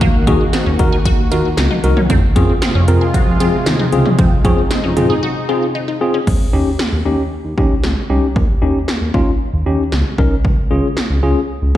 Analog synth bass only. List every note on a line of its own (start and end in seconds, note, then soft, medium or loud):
0.01 0.11 D#2 loud
0.27 0.37 D#2 loud
0.66 0.77 D#2 medium
0.79 0.90 D#2 loud
1.18 1.29 D#2 medium
1.32 1.42 D#2 loud
1.58 1.68 C#2 loud
1.84 1.94 C2 medium
2.10 2.20 F2 loud
2.36 2.46 F2 loud
2.75 2.85 F2 loud
2.88 2.98 F2 loud
3.27 3.38 F2 medium
3.40 3.50 F2 loud
3.66 3.77 D#2 loud
3.92 4.03 C#2 medium
4.19 4.29 F2 loud
4.45 4.55 F2 loud
4.84 4.94 F2 medium
4.97 5.07 F2 loud
6.27 6.38 D#2 loud
6.53 6.64 D#2 loud
6.92 7.03 D#2 medium
7.06 7.16 D#2 loud
7.45 7.55 D#2 loud
7.58 7.68 D#2 loud
7.84 7.94 C#2 loud
8.10 8.20 C2 medium
8.36 8.46 D#2 loud
8.62 8.72 D#2 loud
9.01 9.11 D#2 loud
9.14 9.24 D#2 loud
9.53 9.64 D#2 medium
9.66 9.77 D#2 loud
9.92 10.03 C#2 medium
10.18 10.29 C2 medium
10.45 10.55 C#2 loud
10.71 10.81 C#2 loud
11.10 11.20 C#2 medium
11.23 11.33 C#2 medium
11.62 11.72 C#2 medium